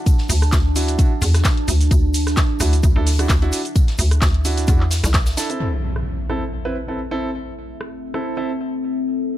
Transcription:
Already playing: ambient pad D4 F#4 E5 A5
0.06 kick, closed hi-hat, shaker
0.18 snare
0.29 fm bass D2, open hi-hat, shaker
0.42 cross-stick, shaker
0.52 fm bass D2, kick, snare, clap, closed hi-hat, shaker
0.76 grand piano D4 E4 F#4, open hi-hat, shaker
0.87 snare, closed hi-hat, shaker
0.99 grand piano D4 E4 F#4, kick, closed hi-hat, shaker
1.22 fm bass E2, snare, open hi-hat, shaker
1.34 cross-stick, snare, closed hi-hat, shaker
1.45 kick, snare, clap, closed hi-hat, shaker
1.57 closed hi-hat
1.68 fm bass D2, open hi-hat, shaker
1.80 snare, closed hi-hat, shaker
1.91 fm bass D2, kick, closed hi-hat, shaker
2.14 open hi-hat, shaker
2.27 cross-stick, snare, shaker
2.37 kick, snare, clap, closed hi-hat, shaker
2.60 fm bass D2, grand piano D4 E4 F#4, cross-stick, open hi-hat, shaker
2.73 snare, closed hi-hat, shaker
2.83 fm bass D2, kick, closed hi-hat, shaker
2.96 fm bass D2, grand piano D4 E4 A4
3.07 snare, open hi-hat, shaker
3.19 grand piano D4 E4 F#4, cross-stick, closed hi-hat, shaker
3.29 fm bass D2, kick, snare, clap, closed hi-hat, shaker
3.42 grand piano D4 E4 F#4, closed hi-hat
3.52 open hi-hat, shaker
3.65 closed hi-hat, shaker
3.76 kick, closed hi-hat, shaker
3.88 snare, closed hi-hat
3.98 fm bass D2, open hi-hat, shaker
4.11 cross-stick, closed hi-hat, shaker
4.21 fm bass D2, kick, snare, clap, closed hi-hat, shaker
4.34 closed hi-hat
4.45 grand piano D4 E4 F#4, open hi-hat, shaker
4.57 snare, closed hi-hat, shaker
4.67 fm bass E2, grand piano D4 E4 F#4, kick, closed hi-hat, shaker
4.80 clap
4.91 snare, open hi-hat, shaker
5.04 fm bass C2, cross-stick, snare, closed hi-hat, shaker
5.13 kick, snare, clap, closed hi-hat, shaker
5.26 snare, closed hi-hat, shaker
5.37 grand piano D4 E4 A4, snare, open hi-hat, shaker
5.50 grand piano C4 E4 A4, closed hi-hat, shaker
5.60 ambient pad C4, crash, impact
5.86 ambient pad A4
5.96 cross-stick
6.30 grand piano C4 E4 A4, cross-stick
6.65 grand piano C4 E4 B4
6.88 grand piano C4 E4 A4
7.11 grand piano C4 E4 A4
7.81 cross-stick
8.14 grand piano C4 E4 A4, cross-stick
8.37 grand piano C4 E4 A4

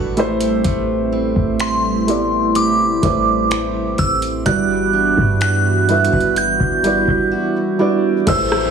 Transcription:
Already playing: 808-style bass A1, analog synth pad D3 G3 A3 F#5, steel-string acoustic guitar G3 B3 F#4 A4, felt piano G3 D4 F#4 A4 B4
0.17 analog synth pad C3 C4 E4, steel-string acoustic guitar A3, felt piano A3 E4 G4 B4 C5, closed hi-hat
0.41 closed hi-hat
0.64 808-style bass A1, steel-string acoustic guitar A3, kick, closed hi-hat
1.12 steel-string acoustic guitar C4
1.36 808-style bass A1, kick
1.60 steel-string acoustic guitar G4, synth bell C6, finger snap, closed hi-hat
2.07 felt piano A3 B3 E4 G4 D5, closed hi-hat
2.55 steel-string acoustic guitar G4, synth bell D6, closed hi-hat
3.02 808-style bass A1, felt piano A3 E4 G4 B4 C5, steel-string acoustic guitar B4, kick, closed hi-hat
3.50 steel-string acoustic guitar G4, finger snap, closed hi-hat
3.98 808-style bass A1, steel-string acoustic guitar C4, synth bell E6, kick, closed hi-hat
4.22 closed hi-hat
4.46 808-style bass G1, analog synth pad E3 B3 D4 F#4, felt piano G3 E4 F#4 B4 D5, steel-string acoustic guitar G3, synth bell F#6, kick, closed hi-hat
4.93 steel-string acoustic guitar D4
5.17 808-style bass G2, kick
5.41 steel-string acoustic guitar F#4, synth bell F#6, finger snap, closed hi-hat
5.88 felt piano G3 E4 F#4 B4 E5, steel-string acoustic guitar A4, closed hi-hat
6.05 closed hi-hat
6.12 808-style bass G1, steel-string acoustic guitar B4, kick
6.21 closed hi-hat
6.36 analog synth pad E4, steel-string acoustic guitar F#4, synth bell G6, closed hi-hat
6.60 808-style bass G1, kick
6.84 felt piano G3 E4 F#4 B4 D5, steel-string acoustic guitar B4, closed hi-hat
7.08 808-style bass G1, kick
7.32 steel-string acoustic guitar F#4
7.79 felt piano G3 E4 F#4 B4 D5, steel-string acoustic guitar D4
8.27 808-style bass A1, analog synth pad E3 G3 A3 C4 G4, felt piano A3 E4 G4 B4 C5, steel-string acoustic guitar A3, synth bell E6, kick, closed hi-hat, downlifter
8.51 steel-string acoustic guitar G4, cross-stick

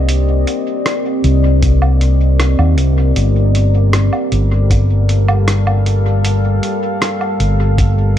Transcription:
Already playing: fingered electric bass C2, ambient pad C4 G4 A#4 D5 D#5
0.09 closed hi-hat
0.47 closed hi-hat
0.86 cross-stick, closed hi-hat
1.24 fingered electric bass C2, closed hi-hat
1.63 kick, closed hi-hat
1.82 low woodblock
2.01 closed hi-hat
2.40 cross-stick, closed hi-hat
2.59 fingered electric bass D#2, low woodblock
2.78 fingered electric bass C2, closed hi-hat
3.16 fingered electric bass G1, ambient pad G3, closed hi-hat
3.55 closed hi-hat
3.92 ambient pad A4, cross-stick, closed hi-hat
4.13 low woodblock
4.32 fingered electric bass G1, closed hi-hat
4.44 ambient pad F5
4.70 kick, closed hi-hat
5.09 closed hi-hat
5.28 low woodblock
5.48 cross-stick, closed hi-hat
5.67 low woodblock
5.86 closed hi-hat
6.25 closed hi-hat
6.63 closed hi-hat
7.02 cross-stick, closed hi-hat
7.21 low woodblock
7.40 fingered electric bass G1, closed hi-hat
7.78 kick, closed hi-hat

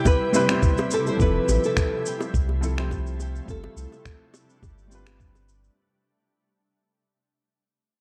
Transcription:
Already playing: ambient pad C3 G3 E4 G4, grand piano G3 C4 E4 B4 C5
0.05 nylon-string guitar B4, kick, high bongo, shaker
0.33 grand piano G3 C4 E4 B4, high bongo, shaker
0.47 grand piano G3 C4 E4 C5, finger snap, shaker
0.63 kick, shaker
0.77 high bongo, shaker
0.91 nylon-string guitar A4, shaker
1.06 nylon-string guitar C5, high bongo, shaker
1.16 sub bass F1, ambient pad C3 F3 A3, grand piano F3 C4, kick, shaker
1.21 grand piano E4 A4, nylon-string guitar B4
1.48 sub bass A1, high bongo, shaker
1.64 nylon-string guitar A4, shaker
1.77 finger snap, kick, high bongo, shaker
2.06 nylon-string guitar G4, shaker
2.20 high bongo, shaker
2.34 sub bass C2, kick, shaker
2.49 high bongo
2.61 grand piano F3 C4 E4 A4, shaker
2.76 grand piano F3 C4 E4 C5, nylon-string guitar G4, finger snap, shaker
2.91 kick, high bongo, shaker
3.07 shaker
3.20 nylon-string guitar G4, high bongo, shaker
3.36 shaker
3.45 sub bass G1, grand piano G3 C4, ambient pad G3 D4, kick, shaker
3.50 grand piano F4 A4, nylon-string guitar A4
3.64 high bongo
3.76 sub bass C2, shaker
3.92 high bongo, shaker
4.05 finger snap, kick, shaker
4.34 high bongo, shaker
4.50 shaker
4.62 sub bass G1, kick, high bongo, shaker
4.78 shaker
4.88 grand piano G3 C4, shaker
4.92 grand piano F4 B4
5.07 finger snap, high bongo, shaker
5.20 kick, shaker
5.35 high bongo, shaker
5.49 shaker
5.64 shaker

